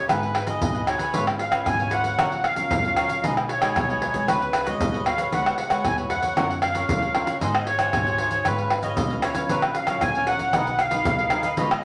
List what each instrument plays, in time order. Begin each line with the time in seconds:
0.08 upright bass G#1, nylon-string guitar G#3 D#4 F#4 B4, cavaquinho D#4 G#4 B4 F#5, accordion B4, pandeiro, tamborim, shaker, surdo
0.23 cavaquinho G#4 B4 F#5, pandeiro, shaker, surdo
0.34 muted cavaquinho stroke, pandeiro, tamborim
0.46 nylon-string guitar D#4 F#4 B4, cavaquinho G#4 B4 F#5, accordion D#5, pandeiro, shaker, surdo
0.61 upright bass G#1, nylon-string guitar D#3, pandeiro, shaker, surdo
0.75 cavaquinho G#4 B4 F#5, pandeiro, shaker
0.86 cavaquinho D#4 G#4 B4 F#5, nylon-string guitar D#4 F#4 B4, accordion C#5, pandeiro, tamborim, shaker, surdo
0.98 cavaquinho G#4 B4 F#5, pandeiro, shaker, surdo
1.13 upright bass G#1, nylon-string guitar G#3 C#4 F4 B4, cavaquinho F4 B4 C#5 F5, accordion B4, pandeiro, shaker, surdo
1.27 cavaquinho B4, pandeiro, tamborim, shaker
1.38 accordion F5, muted cavaquinho stroke, pandeiro
1.51 nylon-string guitar C#4 F4 B4, cavaquinho B4 C#5 F5, pandeiro, tamborim, shaker
1.66 upright bass G#1, nylon-string guitar G#3, accordion G#5, pandeiro, tamborim, shaker, surdo
1.79 nylon-string guitar C#4 F4 B4, cavaquinho B4 C#5 F5, pandeiro, shaker
1.91 cavaquinho F4 B4 C#5 F5, accordion F#5, pandeiro, shaker
2.04 cavaquinho B4 C#5 F5, pandeiro, shaker, surdo
2.18 upright bass A#1, nylon-string guitar A#2 F#3 C#4 F4, cavaquinho F#4 A#4 C#5 F5, pandeiro, tamborim, shaker, surdo
2.32 cavaquinho A#4 C#5 F5, pandeiro, shaker, surdo
2.44 accordion F5, muted cavaquinho stroke, pandeiro, tamborim
2.56 nylon-string guitar F#3 C#4 F4, cavaquinho A#4 C#5 F5, pandeiro, shaker, surdo
2.71 upright bass F#2, nylon-string guitar A#2, pandeiro, shaker, surdo
2.84 nylon-string guitar F#3 C#4 F4, cavaquinho A#4 C#5 F5, pandeiro, shaker
2.96 cavaquinho F#4 A#4 C#5 F5, pandeiro, tamborim, shaker, surdo
3.08 cavaquinho A#4 C#5 F5, pandeiro, shaker, surdo
3.23 upright bass B1, nylon-string guitar B2 G#3 D#4 F#4, cavaquinho D#4 G#4 B4 D#5, accordion D#5, pandeiro, shaker, surdo
3.37 cavaquinho G#4 B4 D#5, pandeiro, tamborim, shaker
3.48 accordion C#5, muted cavaquinho stroke, pandeiro
3.61 nylon-string guitar G#3 D#4 F#4, cavaquinho G#4 B4 D#5, pandeiro, tamborim, shaker
3.75 upright bass B1, nylon-string guitar F#3, pandeiro, tamborim, shaker, surdo
3.89 nylon-string guitar G#3 D#4 F#4, cavaquinho G#4 B4 D#5, pandeiro, shaker
4.00 cavaquinho D#4 G#4 B4 D#5, pandeiro
4.13 nylon-string guitar G#3 B3 F#4, cavaquinho G#4 B4 D#5, pandeiro, shaker, surdo
4.27 upright bass C#2, nylon-string guitar C#3, cavaquinho F#4 B4 C#5 F#5, accordion B4, pandeiro, tamborim, shaker, surdo
4.40 cavaquinho B4 C#5 F#5, pandeiro, shaker, surdo
4.52 muted cavaquinho stroke, pandeiro, tamborim, shaker
4.64 nylon-string guitar G#3 B3 F#4, cavaquinho B4 C#5 F#5, accordion D#5, pandeiro, shaker, surdo
4.80 upright bass C#2, nylon-string guitar G#2, pandeiro, shaker, surdo
4.93 cavaquinho B4 C#5 F#5, pandeiro, shaker
5.05 nylon-string guitar G#3 B3 F#4, cavaquinho F#4 B4 C#5 F#5, accordion F5, pandeiro, tamborim
5.18 cavaquinho B4 C#5 F#5, pandeiro, shaker, surdo
5.32 upright bass C#2, nylon-string guitar C#3 G#3 B3 F#4, cavaquinho F#4 B4 C#5 F#5, accordion F#5, pandeiro, shaker, surdo
5.46 cavaquinho B4 C#5, pandeiro, tamborim, shaker
5.58 upright bass C#2, accordion F#5, muted cavaquinho stroke, pandeiro
5.70 nylon-string guitar G#3 B3 F#4, cavaquinho B4 C#5 F#5, pandeiro, tamborim, shaker
5.84 upright bass D#2, nylon-string guitar G#2, accordion G#5, pandeiro, tamborim, shaker, surdo
5.98 nylon-string guitar G#3 B3 F#4, cavaquinho B4 C#5 F#5, pandeiro, shaker
6.09 upright bass F2, cavaquinho F#4 B4 C#5 F#5, accordion F#5, pandeiro
6.21 cavaquinho B4 C#5 F#5, pandeiro, shaker, surdo
6.36 upright bass F#2, nylon-string guitar F#3 C#4 F4 A#4, cavaquinho F4 A#4 C#5 F#5, pandeiro, tamborim, shaker, surdo
6.50 cavaquinho A#4 C#5 F#5, pandeiro, shaker, surdo
6.62 accordion F5, muted cavaquinho stroke, pandeiro, tamborim
6.74 nylon-string guitar C#4 F4 A#4, cavaquinho A#4 C#5 F#5, pandeiro, shaker, surdo
6.89 upright bass D#2, nylon-string guitar C#3, pandeiro, shaker, surdo
7.02 cavaquinho A#4 C#5 F#5, pandeiro, shaker
7.14 nylon-string guitar C#4 F4 A#4, cavaquinho F4 A#4 C#5 F#5, pandeiro, tamborim
7.26 cavaquinho A#4 C#5 F#5, pandeiro, shaker, surdo
7.40 upright bass G#2, nylon-string guitar G#3 D#4 F#4 C5, cavaquinho D#4 G#4 C5 F#5, accordion D#5, pandeiro, shaker, surdo
7.55 cavaquinho G#4 C5 F#5, pandeiro, tamborim, shaker
7.66 accordion C#5, muted cavaquinho stroke, pandeiro
7.78 nylon-string guitar D#4 F#4 C5, cavaquinho G#4 C5 F#5, pandeiro, tamborim, shaker
7.93 upright bass G#2, nylon-string guitar D#3, pandeiro, tamborim, shaker, surdo
8.06 nylon-string guitar D#4 F#4, cavaquinho G#4 C5 F#5, pandeiro, shaker
8.18 cavaquinho D#4 G#4 C5 F#5, pandeiro
8.31 cavaquinho G#4 C5 F#5, pandeiro, shaker, surdo
8.45 upright bass G#2, nylon-string guitar G#3 C#4 F4 B4, cavaquinho F4 B4 C#5 F5, accordion B4, pandeiro, tamborim, shaker, surdo
8.58 cavaquinho B4 C#5 F5, pandeiro, shaker, surdo
8.70 muted cavaquinho stroke, pandeiro, tamborim
8.83 nylon-string guitar C#4 F4 B4, cavaquinho B4 C#5 F5, accordion D#5, pandeiro, shaker, surdo
8.97 upright bass B1, nylon-string guitar G#3, pandeiro, shaker, surdo
9.10 nylon-string guitar C#4 F4 B4, cavaquinho B4 C#5 F5, pandeiro, shaker
9.22 cavaquinho F4 B4 C#5 F5, accordion C#5, pandeiro, tamborim, shaker
9.35 nylon-string guitar F#3 C#4 F4, cavaquinho B4 C#5 F5, pandeiro, shaker, surdo
9.49 upright bass A#1, nylon-string guitar A#2, cavaquinho F#4 A#4 C#5 F5, accordion B4, pandeiro, shaker, surdo
9.62 cavaquinho A#4 C#5 F5, pandeiro, tamborim, shaker
9.75 accordion F5, muted cavaquinho stroke, pandeiro, shaker
9.87 nylon-string guitar F#3 C#4 F4, cavaquinho A#4 C#5 F5, pandeiro, tamborim, shaker
10.01 upright bass A#1, nylon-string guitar A#2, accordion G#5, pandeiro, tamborim, shaker, surdo
10.15 nylon-string guitar F#3 C#4 F4, cavaquinho A#4 C#5 F5, pandeiro, shaker
10.27 cavaquinho F#4 A#4 C#5 F5, accordion F#5, pandeiro
10.39 cavaquinho A#4 C#5 F5, pandeiro, shaker, surdo
10.53 upright bass B1, nylon-string guitar B2 F#3 A#3 D#4, cavaquinho D#4 A#4 B4 D#5, pandeiro, tamborim, shaker, surdo
10.67 cavaquinho A#4 B4 D#5, pandeiro, shaker, surdo
10.79 accordion F5, muted cavaquinho stroke, pandeiro, tamborim, shaker
10.91 nylon-string guitar F#3 A#3 D#4, cavaquinho A#4 B4 D#5, pandeiro, shaker, surdo
11.05 upright bass C2, nylon-string guitar F#2, pandeiro, shaker, surdo
11.19 cavaquinho A#4 B4 D#5, pandeiro, shaker
11.30 nylon-string guitar F#3 A#3 D#4, cavaquinho D#4 A#4 B4 D#5, pandeiro, tamborim, shaker
11.43 cavaquinho A#4 B4 D#5, pandeiro, shaker, surdo
11.57 upright bass C#2, nylon-string guitar C#3 G#3 B3 F4, cavaquinho F4 B4 C#5, accordion D#5, pandeiro, shaker, surdo
11.61 cavaquinho F5
11.71 cavaquinho B4 C#5 F5, pandeiro, tamborim, shaker